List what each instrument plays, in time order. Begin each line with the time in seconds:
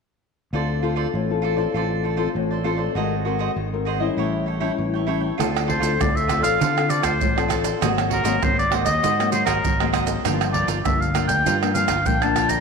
0.53 fingered electric bass D2, nylon-string guitar D3 C4 F4 A4, cavaquinho F4 A4 C5 D5
0.82 nylon-string guitar C4 F4 A4, cavaquinho F4 A4 C5 D5
0.96 cavaquinho F4 A4 C5 D5
1.14 fingered electric bass A1, nylon-string guitar A2
1.30 nylon-string guitar C4 F4 A4
1.42 cavaquinho F4 A4 C5 D5
1.57 nylon-string guitar C4 F4 A4, cavaquinho A4 C5 D5
1.74 fingered electric bass A1, nylon-string guitar D3 C4 F4 A4, cavaquinho F4 A4 C5 D5
2.03 cavaquinho F4 A4 C5 D5
2.17 nylon-string guitar C4 F4 A4, cavaquinho F4 A4 C5 D5
2.35 fingered electric bass A1, nylon-string guitar A2
2.51 cavaquinho A4 C5 D5
2.64 nylon-string guitar C4 F4 A4, cavaquinho F4 A4 C5 D5
2.77 cavaquinho A4 C5 D5
2.95 fingered electric bass G#1, nylon-string guitar G#3 C4 F#4 A#4, cavaquinho F#4 G#4 C5 D#5
3.25 nylon-string guitar C4 F#4 A#4, cavaquinho F#4 G#4 C5 D#5
3.39 cavaquinho F#4 G#4 C5 D#5
3.56 fingered electric bass G#1, nylon-string guitar D#3
3.73 nylon-string guitar C4 F#4 A#4
3.85 cavaquinho F#4 G#4 C5 D#5
3.99 nylon-string guitar G3 C#4 E4, cavaquinho G#4 C5 D#5
4.17 fingered electric bass A1, nylon-string guitar A2, cavaquinho E4 A4 C#5 G5
4.46 cavaquinho E4 A4 C#5 G5
4.60 nylon-string guitar G3 C#4 E4, cavaquinho E4 A4 C#5 G5
4.78 fingered electric bass A1, nylon-string guitar E3
4.94 cavaquinho A4 C#5 G5
5.06 nylon-string guitar G3 C#4 E4, cavaquinho E4 A4 C#5 G5
5.20 cavaquinho A4 C#5 G5
5.38 fingered electric bass D2, nylon-string guitar D3 C4 F4 A4, cavaquinho F4 A4 C5 D5, pandeiro, tamborim, maracas, surdo
5.57 pandeiro, tamborim, maracas
5.66 nylon-string guitar C4 F4 A4, cavaquinho F4 A4 C5 D5, oboe C5, pandeiro, surdo
5.80 fingered electric bass D2, cavaquinho F4 A4 C5 D5, pandeiro, maracas
5.99 fingered electric bass D2, nylon-string guitar A2 C4 F4 A4, oboe D5, pandeiro, tamborim, maracas, surdo
6.15 oboe E5, pandeiro, maracas
6.27 nylon-string guitar C4 F4 A4, cavaquinho F4 A4 C5 D5, pandeiro, tamborim, maracas
6.41 fingered electric bass A1, cavaquinho A4 C5 D5, oboe F5, pandeiro, maracas, surdo
6.59 nylon-string guitar D3, fingered electric bass D3, cavaquinho F4 A4 C5 D5, pandeiro, maracas, surdo
6.76 nylon-string guitar C4 F4 A4, pandeiro, tamborim, maracas
6.88 cavaquinho F4 A4 C5 D5, oboe D5, pandeiro, maracas
7.02 fingered electric bass D2, cavaquinho F4 A4 C5 D5, oboe C5, pandeiro, tamborim, maracas, surdo
7.21 fingered electric bass A1, nylon-string guitar A2, pandeiro, maracas, surdo
7.36 nylon-string guitar C4 F4 A4, cavaquinho A4 C5 D5, pandeiro, tamborim, maracas
7.48 cavaquinho F4 A4 C5 D5, pandeiro, tamborim, maracas, surdo
7.64 cavaquinho A4 C5 D5, pandeiro, maracas, surdo
7.81 fingered electric bass G#1, nylon-string guitar G#2 F#3 A#3 C4, cavaquinho F#4 G#4 C5 D#5, pandeiro, tamborim, maracas, surdo
7.98 pandeiro, tamborim, maracas
8.10 cavaquinho F#4 G#4 C5 D#5, oboe A#4, pandeiro, surdo
8.23 fingered electric bass G#1, nylon-string guitar F#3 A#3 C4, cavaquinho F#4 G#4 C5 D#5, pandeiro, maracas
8.42 fingered electric bass G#1, nylon-string guitar D#3 F#3 A#3 C4, oboe C5, pandeiro, tamborim, maracas, surdo
8.59 oboe D5, pandeiro, maracas
8.71 nylon-string guitar F#3 A#3 C4, cavaquinho F#4 G#4 C5 D#5, pandeiro, tamborim
8.85 fingered electric bass D#2, cavaquinho G#4 C5 D#5, oboe D#5, pandeiro, maracas, surdo
9.03 nylon-string guitar G#2, fingered electric bass G#2, cavaquinho F#4 G#4 C5 D#5, pandeiro, maracas, surdo
9.19 nylon-string guitar F#3 A#3 C4, pandeiro, tamborim, maracas
9.32 cavaquinho F#4 G#4 C5 D#5, oboe C5, pandeiro, maracas
9.46 fingered electric bass G#1, cavaquinho F#4 G#4 C5 D#5, oboe A#4, pandeiro, tamborim, maracas, surdo
9.64 fingered electric bass G#1, nylon-string guitar D#3, pandeiro, maracas, surdo
9.80 nylon-string guitar F#3 A#3 C4, cavaquinho G#4 C5 D#5, pandeiro, tamborim, maracas
9.92 cavaquinho F#4 G#4 C5 D#5, pandeiro, tamborim, maracas, surdo
10.06 cavaquinho G#4 C5 D#5, pandeiro, maracas, surdo
10.24 fingered electric bass G1, nylon-string guitar G2 F3 A#3 D4, cavaquinho F4 A#4 D5 G5, pandeiro, tamborim, maracas, surdo
10.41 pandeiro, tamborim, maracas
10.53 cavaquinho F4 A#4 D5 G5, oboe D5, pandeiro, surdo
10.67 fingered electric bass G1, cavaquinho F4 A#4 D5 G5, pandeiro, maracas
10.84 fingered electric bass G1, nylon-string guitar D3 F3 A#3 D4, oboe E5, pandeiro, tamborim, maracas, surdo
11.01 oboe F5, pandeiro, maracas
11.14 nylon-string guitar F3 A#3 D4, cavaquinho F4 A#4 D5 G5, pandeiro, tamborim, maracas
11.27 fingered electric bass D2, cavaquinho A#4 D5 G5, oboe G5, pandeiro, maracas, surdo
11.45 nylon-string guitar G2, fingered electric bass G2, cavaquinho F4 A#4 D5 G5, pandeiro, maracas, surdo
11.62 nylon-string guitar F3 A#3 D4, pandeiro, tamborim, maracas
11.74 nylon-string guitar F3 A#3 D4, cavaquinho F4 A#4 D5 G5, oboe F5, pandeiro, maracas
11.88 fingered electric bass G1, cavaquinho F4 A#4 D5 G5, pandeiro, tamborim, maracas, surdo
12.06 fingered electric bass A#1, nylon-string guitar D3 F3 A#3 D4, oboe G5, pandeiro, maracas, surdo
12.22 nylon-string guitar F3 A#3 D4, cavaquinho A#4 D5 G5, oboe A5, pandeiro, tamborim, maracas
12.36 cavaquinho F4 A#4 D5 G5, pandeiro, tamborim, maracas, surdo
12.49 cavaquinho A#4 D5 G5, oboe A#5, pandeiro, maracas, surdo